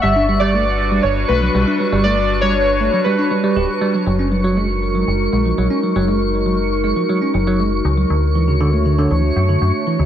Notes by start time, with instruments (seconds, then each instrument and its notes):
Already playing: synth texture C#6
0.02 fm bass G1, tine electric piano G3, ambient pad G3 D4 F#4 B4, synth keys E5
0.16 tine electric piano D4
0.29 tine electric piano G3
0.40 tine electric piano G3, synth keys D5
0.54 tine electric piano A3
0.92 tine electric piano G3
1.03 fm bass G1, synth keys C#5
1.28 fm bass B1, tine electric piano A3, synth keys B4
1.42 tine electric piano F#3
1.55 fm bass B1, tine electric piano G3
1.67 tine electric piano D4
1.80 tine electric piano G3
1.93 fm bass G1, tine electric piano G3
2.04 tine electric piano A3, synth keys D5
2.41 tine electric piano G3, synth keys C#5
2.81 tine electric piano A3
2.93 tine electric piano F#3
3.04 tine electric piano G3, synth keys B4
3.19 tine electric piano D4
3.31 tine electric piano G3
3.44 tine electric piano G3
3.56 fm bass D1, tine electric piano G4
3.82 tine electric piano G3
3.94 tine electric piano F#3
4.07 fm bass F#1, tine electric piano F#3, ambient pad G#3 D#4 F#4 A#4, synth texture C#6
4.19 tine electric piano C#4
4.32 tine electric piano F#3
4.44 tine electric piano F#3
4.57 tine electric piano G#3
4.95 tine electric piano F#3
5.08 fm bass F#1
5.33 fm bass A#1, tine electric piano G#3
5.45 tine electric piano F3
5.58 fm bass A#1, tine electric piano F#3
5.71 tine electric piano C#4
5.83 tine electric piano F#3
5.96 fm bass F#1, tine electric piano F#3
6.08 tine electric piano G#3
6.46 tine electric piano F#3
6.84 tine electric piano G#3
6.97 tine electric piano F3
7.09 tine electric piano F#3
7.22 tine electric piano C#4
7.34 fm bass F#1, tine electric piano F#3
7.47 tine electric piano F#3
7.60 tine electric piano G#3
7.85 fm bass C#2
7.98 tine electric piano F#3
8.10 fm bass D2, ambient pad A3 D4 C#5
8.35 tine electric piano E3
8.48 tine electric piano C#3
8.61 tine electric piano D3
8.73 tine electric piano A3
8.86 tine electric piano D3
8.98 tine electric piano D3
9.11 fm bass D2, tine electric piano E3
9.36 fm bass F#2
9.49 tine electric piano D3
9.62 fm bass F#2
9.87 tine electric piano E3
9.99 fm bass D2, tine electric piano C#3